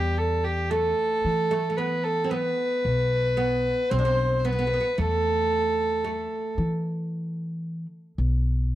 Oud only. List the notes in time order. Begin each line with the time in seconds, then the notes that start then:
Already playing: G3
0.71 A3
1.51 A3
1.70 A3
1.78 B3
2.24 C4
2.31 B3
3.37 B3
3.91 C4
3.99 D4
4.05 C4
4.45 B3
4.53 B3
4.59 B3
4.67 B3
4.74 B3
4.80 B3
4.98 A3
6.04 A3